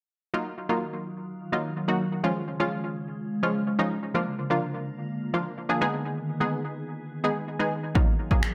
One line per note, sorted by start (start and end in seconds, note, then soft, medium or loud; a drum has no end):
0.33 2.22 D#3 medium
0.33 2.22 F#3 medium
0.33 0.52 F#3 medium
0.33 0.52 A#3 medium
0.33 0.52 D#4 medium
0.33 4.11 F4 medium
0.33 0.53 F4 medium
0.69 1.13 F#3 medium
0.69 1.13 A#3 medium
0.69 1.13 D#4 medium
0.69 1.13 F4 medium
1.52 1.71 F#3 medium
1.52 1.71 A#3 medium
1.52 1.71 D#4 medium
1.52 1.72 F4 medium
1.88 2.07 F#3 medium
1.88 2.07 A#3 medium
1.88 2.07 D#4 medium
1.88 2.07 F#4 medium
2.24 4.13 C#3 medium
2.24 2.43 F3 medium
2.24 2.43 G#3 medium
2.24 4.13 G#3 medium
2.24 2.43 C#4 medium
2.24 2.43 F4 medium
2.60 3.04 F3 medium
2.60 3.04 G#3 medium
2.60 3.04 C#4 medium
2.60 3.04 F4 loud
3.43 3.62 F3 medium
3.43 3.62 G#3 medium
3.43 3.62 C#4 medium
3.43 3.62 F4 medium
3.79 3.98 F3 medium
3.79 3.98 G#3 medium
3.79 3.98 C#4 medium
3.79 3.98 D#4 loud
4.14 5.79 D3 medium
4.14 4.33 F3 medium
4.14 5.80 A#3 medium
4.14 4.33 A#3 medium
4.14 4.33 D4 medium
4.14 5.79 F4 medium
4.14 4.33 F4 loud
4.50 4.94 F3 medium
4.50 4.94 A#3 medium
4.50 4.94 D4 medium
4.50 4.94 F4 medium
5.34 5.52 F3 medium
5.34 5.52 A#3 medium
5.34 5.52 D4 medium
5.34 5.53 F4 medium
5.69 5.81 F3 medium
5.69 5.81 A#3 medium
5.69 5.81 D4 medium
5.69 5.80 G#4 medium
5.81 7.93 D#3 medium
5.81 6.29 G#3 loud
5.81 7.93 B3 medium
5.81 6.29 B3 medium
5.81 6.29 D#4 medium
5.81 7.93 G#4 medium
5.81 6.29 G#4 loud
6.40 6.84 G#3 medium
6.40 6.84 B3 medium
6.40 6.85 D#4 medium
6.40 6.85 G#4 medium
7.24 7.43 G#3 medium
7.24 7.43 B3 medium
7.24 7.43 D#4 medium
7.24 7.43 G#4 loud
7.59 7.78 G#3 medium
7.59 7.78 B3 medium
7.59 7.78 D#4 medium
7.59 7.79 G#4 medium
7.95 8.54 D#3 medium
7.95 8.14 F#3 medium
7.95 8.54 F#3 medium
7.95 8.14 A#3 medium
7.95 8.14 D#4 medium
7.95 8.14 F4 medium
7.95 8.54 F4 medium
7.95 kick loud
8.31 8.54 F#3 medium
8.31 8.54 A#3 medium
8.31 8.54 D#4 medium
8.31 8.54 G#4 medium
8.31 kick medium
8.43 finger snap loud